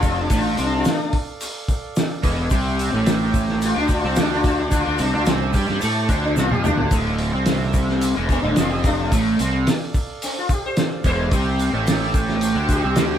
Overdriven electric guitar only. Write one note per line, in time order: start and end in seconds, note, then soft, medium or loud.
0.00 0.30 F2 medium
0.00 0.30 F3 medium
0.31 0.57 A2 medium
0.31 0.58 A3 loud
0.58 0.85 C3 medium
0.58 0.85 C4 loud
2.23 2.50 E2 medium
2.23 2.51 E3 medium
2.51 2.92 C3 medium
2.51 2.92 C4 loud
2.93 3.75 A2 medium
2.93 3.75 A3 medium
3.75 4.02 D3 medium
3.75 4.03 D4 medium
4.03 4.16 C3 medium
4.03 4.16 C4 medium
4.16 4.70 D3 medium
4.16 4.71 D4 loud
4.71 4.84 D3 medium
4.71 4.85 D4 loud
4.86 4.99 D3 medium
4.86 4.99 D4 medium
4.98 5.12 C3 medium
4.98 5.12 C4 loud
5.12 5.26 D3 medium
5.12 5.26 D4 loud
5.25 5.53 C3 loud
5.25 5.52 C4 loud
5.52 5.65 G3 medium
5.52 5.66 G4 medium
5.66 5.80 G3 medium
5.66 5.80 G4 loud
5.80 6.08 A3 medium
5.80 6.08 A4 loud
6.08 6.36 D3 medium
6.08 6.36 D4 loud
6.35 6.49 C3 medium
6.35 6.50 C4 loud
6.50 6.63 F3 medium
6.50 6.64 F4 medium
6.63 6.91 D3 medium
6.63 6.91 D4 medium
6.91 7.32 D2 medium
6.91 7.33 D3 loud
7.33 8.15 C3 medium
7.33 8.15 C4 loud
8.16 8.43 E2 medium
8.16 8.43 E3 loud
8.44 8.56 D2 medium
8.44 8.57 D3 medium
8.58 9.11 F2 medium
8.58 9.12 F3 loud
9.13 9.39 A2 loud
9.13 9.39 A3 medium
9.40 9.67 C3 medium
9.40 9.67 C4 medium
11.05 11.31 E2 loud
11.05 11.32 E3 medium
11.33 11.73 C3 medium
11.33 11.73 C4 loud
11.74 12.55 A2 medium
11.74 12.55 A3 loud
12.56 12.82 D3 medium
12.56 12.82 D4 loud
12.83 12.96 C3 medium
12.83 12.97 C4 loud
12.97 13.18 D3 medium
12.97 13.18 D4 loud